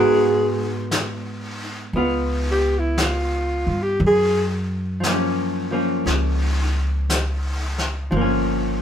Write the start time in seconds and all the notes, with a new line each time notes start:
Already playing: G#2 G#3 B3 F#4 G#4 A#4
0.91 brush sweep, snare, hi-hat pedal
1.93 C#2 B3 F4, brush sweep
2.51 G4
2.79 E4
2.98 brush sweep, snare, hi-hat pedal
3.05 F4
3.67 G2
3.82 G4
4.00 F#2, brush sweep
4.07 G#4
5.00 F3, brush sweep, snare, hi-hat pedal
5.07 A#3
5.12 C#4
5.71 F3 A#3 C#4
6.06 C#2, brush sweep, snare
7.10 brush sweep, snare, hi-hat pedal
7.78 snare
8.11 G1 F3, brush sweep
8.17 A#3
8.21 C#4